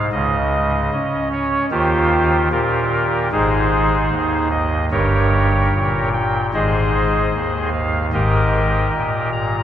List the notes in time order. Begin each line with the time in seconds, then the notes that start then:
0.12 C#2 C#3 D#5
0.92 C#4
1.32 C#5
1.71 D#2 D#3 F4 G4 C5
2.52 A#2 F4 G4 A#4
3.31 G#1 G#2 D#4 G#4 C5
4.11 D#2
4.51 D#5
4.91 G1 G2 G4 A#4 C#5
5.74 A#2
6.13 G5
6.54 G#1 G#2 G#4 C5 D#5
7.34 D#2
7.72 F5
8.13 G#1 G#2 G4 A#4 D#5
8.94 A#2
9.32 A#5